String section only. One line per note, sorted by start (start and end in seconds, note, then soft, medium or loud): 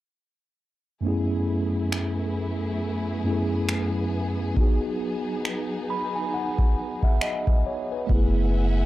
1.04 8.06 F#3 medium
1.04 4.53 A3 medium
1.04 8.06 B3 medium
1.04 4.53 E4 medium
1.04 8.05 G#4 medium
4.57 8.06 D#4 medium
8.10 8.86 B4 medium
8.10 8.86 E5 medium
8.10 8.86 F#5 medium
8.10 8.86 G#5 medium